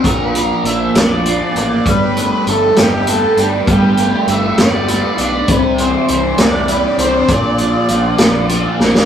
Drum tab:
HH |x-x-x-x-x-x-|x-x-x-x-x-x-|x-x-x-x-x-x-|x-x-x-x-x-x-|
SD |------o-----|------o-----|------o-----|------o-----|
BD |o-----------|o-----------|o-----------|o-----------|

HH |x-x-x-x-x---|
SD |------o---oo|
BD |o-----------|